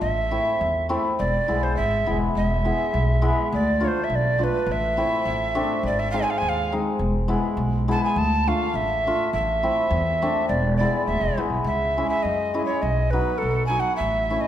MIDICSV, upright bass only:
0, 0, Header, 1, 2, 480
1, 0, Start_track
1, 0, Tempo, 583090
1, 12, Time_signature, 2, 2, 24, 8
1, 11916, End_track
2, 0, Start_track
2, 0, Title_t, "Upright bass"
2, 0, Program_c, 0, 32
2, 12, Note_on_c, 0, 33, 97
2, 301, Note_off_c, 0, 33, 0
2, 501, Note_on_c, 0, 40, 94
2, 787, Note_off_c, 0, 40, 0
2, 985, Note_on_c, 0, 28, 95
2, 1125, Note_off_c, 0, 28, 0
2, 1231, Note_on_c, 0, 35, 71
2, 1439, Note_off_c, 0, 35, 0
2, 1465, Note_on_c, 0, 32, 77
2, 1676, Note_off_c, 0, 32, 0
2, 1706, Note_on_c, 0, 28, 77
2, 1917, Note_off_c, 0, 28, 0
2, 1936, Note_on_c, 0, 28, 88
2, 2223, Note_off_c, 0, 28, 0
2, 2418, Note_on_c, 0, 35, 100
2, 2704, Note_off_c, 0, 35, 0
2, 2900, Note_on_c, 0, 38, 99
2, 3186, Note_off_c, 0, 38, 0
2, 3372, Note_on_c, 0, 35, 94
2, 3659, Note_off_c, 0, 35, 0
2, 3840, Note_on_c, 0, 33, 99
2, 4131, Note_off_c, 0, 33, 0
2, 4325, Note_on_c, 0, 33, 96
2, 4614, Note_off_c, 0, 33, 0
2, 4801, Note_on_c, 0, 32, 94
2, 5091, Note_off_c, 0, 32, 0
2, 5284, Note_on_c, 0, 39, 92
2, 5573, Note_off_c, 0, 39, 0
2, 5757, Note_on_c, 0, 28, 97
2, 6047, Note_off_c, 0, 28, 0
2, 6230, Note_on_c, 0, 35, 97
2, 6523, Note_off_c, 0, 35, 0
2, 6717, Note_on_c, 0, 38, 107
2, 7008, Note_off_c, 0, 38, 0
2, 7194, Note_on_c, 0, 33, 96
2, 7486, Note_off_c, 0, 33, 0
2, 7682, Note_on_c, 0, 33, 101
2, 7971, Note_off_c, 0, 33, 0
2, 8154, Note_on_c, 0, 40, 107
2, 8446, Note_off_c, 0, 40, 0
2, 8638, Note_on_c, 0, 28, 104
2, 8928, Note_off_c, 0, 28, 0
2, 9116, Note_on_c, 0, 26, 91
2, 9224, Note_off_c, 0, 26, 0
2, 9229, Note_on_c, 0, 28, 90
2, 9342, Note_off_c, 0, 28, 0
2, 9347, Note_on_c, 0, 32, 62
2, 9460, Note_off_c, 0, 32, 0
2, 9465, Note_on_c, 0, 35, 73
2, 9580, Note_off_c, 0, 35, 0
2, 9585, Note_on_c, 0, 37, 99
2, 9880, Note_off_c, 0, 37, 0
2, 10078, Note_on_c, 0, 42, 92
2, 10369, Note_off_c, 0, 42, 0
2, 10559, Note_on_c, 0, 35, 94
2, 10849, Note_off_c, 0, 35, 0
2, 11049, Note_on_c, 0, 35, 85
2, 11336, Note_off_c, 0, 35, 0
2, 11525, Note_on_c, 0, 33, 98
2, 11813, Note_off_c, 0, 33, 0
2, 11916, End_track
0, 0, End_of_file